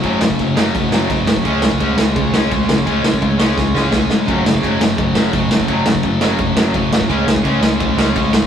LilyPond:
<<
  \new Staff \with { instrumentName = "Distorted electric guitar" } { \clef bass \time 4/4 \key cis \phrygian \tempo 4 = 170 <fis, cis fis>4. <fis, cis fis>4. <fis, cis fis>4 | <cis gis cis'>4. <cis gis cis'>4. <cis gis cis'>4 | <cis gis cis'>4. <cis gis cis'>4. <cis gis cis'>4 | <fis, cis fis>4. <fis, cis fis>4. <fis, cis fis>4 |
<fis, cis fis>4. <fis, cis fis>4. <fis, cis fis>4 | <cis gis cis'>4. <cis gis cis'>4. <cis gis cis'>4 | }
  \new Staff \with { instrumentName = "Overdriven electric guitar" } { \clef bass \time 4/4 \key cis \phrygian <fis, cis fis>8 <fis, cis>8 <fis, cis>8 <fis, cis fis>8 <fis, cis>8 <fis, cis fis>8 <fis, cis>8 <fis, cis>8 | <cis gis cis'>8 <cis gis>8 <cis gis cis'>8 <cis gis>8 <cis gis>8 <cis gis cis'>8 <cis gis>8 <cis gis>8 | <cis gis cis'>8 <cis gis>8 <cis gis>8 <cis gis cis'>8 <cis gis>8 <cis gis cis'>8 <cis gis>8 <cis gis>8 | <fis, cis fis>8 <fis, cis>8 <fis, cis fis>8 <fis, cis>8 <fis, cis>8 <fis, cis fis>8 <fis, cis>8 <fis, cis>8 |
<fis, cis fis>8 <fis, cis>8 <fis, cis>8 <fis, cis fis>8 <fis, cis>8 <fis, cis fis>8 <fis, cis>8 <fis, cis>8 | <cis gis cis'>8 <cis gis>8 <cis gis cis'>8 <cis gis>8 <cis gis>8 <cis gis cis'>8 <cis gis>8 <cis gis>8 | }
  \new Staff \with { instrumentName = "Overdriven electric guitar" } { \clef bass \time 4/4 \key cis \phrygian <fis, cis fis>8 <fis, cis>8 <fis, cis>8 <fis, cis fis>8 <fis, cis>8 <fis, cis fis>8 <fis, cis>8 <fis, cis>8 | <cis gis cis'>8 <cis gis>8 <cis gis cis'>8 <cis gis>8 <cis gis>8 <cis gis cis'>8 <cis gis>8 <cis gis>8 | <cis gis cis'>8 <cis gis>8 <cis gis>8 <cis gis cis'>8 <cis gis>8 <cis gis cis'>8 <cis gis>8 <cis gis>8 | <fis, cis fis>8 <fis, cis>8 <fis, cis fis>8 <fis, cis>8 <fis, cis>8 <fis, cis fis>8 <fis, cis>8 <fis, cis>8 |
<fis, cis fis>8 <fis, cis>8 <fis, cis>8 <fis, cis fis>8 <fis, cis>8 <fis, cis fis>8 <fis, cis>8 <fis, cis>8 | <cis gis cis'>8 <cis gis>8 <cis gis cis'>8 <cis gis>8 <cis gis>8 <cis gis cis'>8 <cis gis>8 <cis gis>8 | }
  \new Staff \with { instrumentName = "Picked electric bass" } { \clef bass \time 4/4 \key cis \phrygian fis,,8 fis,,8 fis,,4 fis,,8 fis,,8 fis,,8 fis,8 | cis,8 cis,8 cis,8 cis,8 cis,8 cis,8 cis,8 cis,8 | cis,8 cis,8 cis,4 cis,8 cis,8 cis,8 gis,8 | fis,,8 fis,,8 fis,,8 fis,,8 fis,,8 fis,,8 fis,,8 fis,,8 |
fis,,8 fis,,8 fis,,4 fis,,8 fis,,8 fis,,8 fis,8 | cis,8 cis,8 cis,8 cis,8 cis,8 cis,8 cis,8 cis,8 | }
  \new DrumStaff \with { instrumentName = "Drums" } \drummode { \time 4/4 <cymc bd>8 sn16 bd16 <cymc bd>8 sn8 <cymc bd>8 sn8 <cymc bd>8 sn16 bd16 | <cymc bd>8 sn16 bd16 <cymc bd>8 sn8 <cymc bd>8 sn8 <cymc bd>8 sn16 bd16 | <cymc bd>8 sn16 bd16 <cymc bd>8 sn8 <bd sn>8 sn8 <bd sn>8 sn8 | <cymc bd>8 sn16 bd16 <cymc bd>8 sn8 <cymc bd>8 sn8 <cymc bd>8 sn16 bd16 |
<cymc bd>8 sn16 bd16 <cymc bd>8 sn8 <cymc bd>8 sn8 <cymc bd>8 sn16 bd16 | <cymc bd>8 sn16 bd16 <cymc bd>8 sn8 <cymc bd>8 sn8 <cymc bd>8 sn16 bd16 | }
>>